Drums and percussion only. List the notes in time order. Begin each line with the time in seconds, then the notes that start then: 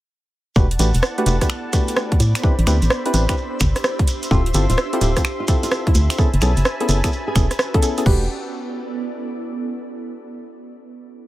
0.56 kick, shekere
0.71 closed hi-hat
0.79 closed hi-hat, shekere
0.94 closed hi-hat, shekere
1.03 cross-stick, shekere
1.18 closed hi-hat
1.26 closed hi-hat, shekere
1.41 kick, cross-stick, closed hi-hat, shekere
1.49 finger snap, shekere
1.73 kick, closed hi-hat, shekere
1.88 closed hi-hat, shekere
1.97 cross-stick, shekere
2.12 kick, closed hi-hat
2.20 closed hi-hat, shekere
2.35 finger snap, closed hi-hat, shekere
2.43 kick, shekere
2.59 closed hi-hat
2.67 finger snap, closed hi-hat, shekere
2.82 closed hi-hat, shekere
2.90 cross-stick, shekere
3.06 closed hi-hat
3.14 closed hi-hat, shekere
3.29 finger snap, kick, closed hi-hat, shekere
3.37 shekere
3.60 finger snap, kick, closed hi-hat, shekere
3.76 cross-stick, closed hi-hat, shekere
3.84 cross-stick, shekere
3.99 kick, closed hi-hat
4.08 closed hi-hat, shekere
4.23 closed hi-hat, shekere
4.31 kick, shekere
4.46 closed hi-hat
4.54 closed hi-hat, shekere
4.70 closed hi-hat, shekere
4.78 cross-stick, shekere
4.93 closed hi-hat
5.01 closed hi-hat, shekere
5.17 kick, cross-stick, closed hi-hat, shekere
5.25 finger snap, shekere
5.48 kick, closed hi-hat, shekere
5.63 closed hi-hat, shekere
5.72 cross-stick, shekere
5.87 kick, closed hi-hat
5.95 closed hi-hat, shekere
6.10 finger snap, closed hi-hat, shekere
6.18 kick, shekere
6.34 closed hi-hat
6.41 finger snap, closed hi-hat, shekere
6.57 closed hi-hat, shekere
6.65 cross-stick, shekere
6.80 closed hi-hat
6.89 closed hi-hat, shekere
7.04 finger snap, kick, closed hi-hat, shekere
7.12 shekere
7.36 finger snap, kick, closed hi-hat, shekere
7.51 cross-stick, closed hi-hat, shekere
7.59 cross-stick, shekere
7.74 kick, closed hi-hat
7.83 closed hi-hat, shekere
7.97 closed hi-hat, shekere
8.06 kick, crash